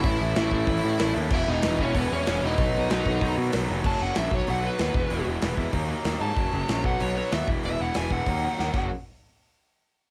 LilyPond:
<<
  \new Staff \with { instrumentName = "Lead electric guitar" } { \time 4/4 \key b \lydian \tempo 4 = 190 <e' e''>2.~ <e' e''>8 r8 | <e' e''>8 <dis' dis''>4 <cis' cis''>8 <b b'>8 <cis' cis''>4 <dis' dis''>8~ | <dis' dis''>2~ <dis' dis''>8 r4. | \key fis \mixolydian a''8 fis''8 e''8 cis''8 fis''8 b'4.~ |
b'8 r2. a''8~ | a''4. fis''8 cis''8 cis''8 e''8 r8 | e''8 fis''8 gis''8 fis''2~ fis''8 | r1 | }
  \new Staff \with { instrumentName = "Overdriven electric guitar" } { \clef bass \time 4/4 \key b \lydian <a, e a cis' e'>4 <a, e a cis' e'>8 <a, e a cis' e'>8 <a, e a cis' e'>4 <a, e a cis' e'>8 <a, e a cis' e'>8 | <e gis b e'>4 <e gis b e'>8 <e gis b e'>8 <e gis b e'>4 <e gis b e'>8 <e gis b e'>8 | <b, dis fis b dis'>4 <b, dis fis b dis'>8 <b, dis fis b dis'>8 <b, dis fis b dis'>4 <b, dis fis b dis'>8 <b, dis fis b dis'>8 | \key fis \mixolydian <fis, cis fis ais cis' fis'>8 <fis, cis fis ais cis' fis'>8 <fis, cis fis ais cis' fis'>8 <b, fis b dis'>8 <b, fis b dis'>8 <b, fis b dis'>8 <b, fis b dis'>8 <e gis b e'>8 |
<e gis b e'>8 <e gis b e'>8 <e gis b e'>8 <e gis b e'>8 <dis fis ais dis'>8 <dis fis ais dis'>8 <dis fis ais dis'>8 <dis fis ais dis'>8 | <fis, cis fis ais cis'>8 <fis, cis fis ais cis'>8 <fis, cis fis ais cis'>8 <b, fis b dis'>8 <b, fis b dis'>8 <b, fis b dis'>8 <b, fis b dis'>8 <e gis b e'>8 | <e gis b e'>8 <e gis b e'>8 <e gis b e'>8 <e gis b e'>8 <dis fis ais dis'>8 <dis fis ais dis'>8 <dis fis ais dis'>8 <fis, cis fis ais cis' fis'>8 | r1 | }
  \new Staff \with { instrumentName = "Overdriven electric guitar" } { \clef bass \time 4/4 \key b \lydian <a, e a>4 <a, e a>8 <a, e a>8 <a, e a>4 <a, e a>8 <a, e a>8 | <e, b, e>4 <e, b, e>8 <e, b, e>8 <e, b, e>4 <e, b, e>8 <e, b, e>8 | <b, fis b>4 <b, fis b>8 <b, fis b>8 <b, fis b>4 <b, fis b>8 <b, fis b>8 | \key fis \mixolydian <fis, cis fis>8 <fis, cis fis>8 <fis, cis fis>8 <b, fis b>8 <b, fis b>8 <b, fis b>8 <b, fis b>8 <e, b, e>8 |
<e, b, e>8 <e, b, e>8 <e, b, e>8 <e, b, e>8 <dis ais dis'>8 <dis ais dis'>8 <dis ais dis'>8 <dis ais dis'>8 | <fis, cis fis>8 <fis, cis fis>8 <fis, cis fis>8 <b, fis b>8 <b, fis b>8 <b, fis b>8 <b, fis b>8 <e, b, e>8 | <e, b, e>8 <e, b, e>8 <e, b, e>8 <e, b, e>8 <dis ais dis'>8 <dis ais dis'>8 <dis ais dis'>8 <fis, cis fis>8 | r1 | }
  \new Staff \with { instrumentName = "Picked electric bass" } { \clef bass \time 4/4 \key b \lydian a,,8 a,,8 a,,8 a,,8 a,,8 a,8 a,,8 dis,8 | e,,8 e,,8 e,,8 e,,8 e,,8 e,8 e,,8 e,,8 | b,,8 b,,8 b,,8 b,,8 b,,8 b,8 b,,8 eis,,8 | \key fis \mixolydian fis,,8 fis,,8 ais,,8 b,,8 b,,4 dis,8 e,,8 |
e,,8 e,,8 e,,8 e,8 dis,4 dis,8 gis,8 | fis,,8 fis,,8 ais,,8 b,,8 b,,4 dis,8 e,,8 | e,,8 e,,8 e,,8 e,,8 dis,4 dis,8 fis,,8 | r1 | }
  \new DrumStaff \with { instrumentName = "Drums" } \drummode { \time 4/4 <hho bd>4 <hho sn>8 bd8 <hho bd>4 <hho sn>4 | <cymc bd>4 <hho sn>8 bd8 <hho bd>4 <hho sn>4 | <hho bd>4 <hho sn>8 bd8 <hho bd>4 <hho sn>4 | <cymc bd>4 <hho sn>8 bd8 hho4 <hho sn>8 bd8 |
hho4 <hho sn>8 bd8 <hho bd>4 <hho sn>4 | <hho bd>4 <hho sn>8 bd8 hho4 <hho sn>8 bd8 | hho4 <hho sn>8 bd8 <hho bd>4 sn8 <cymc bd>8 | r4 r4 r4 r4 | }
>>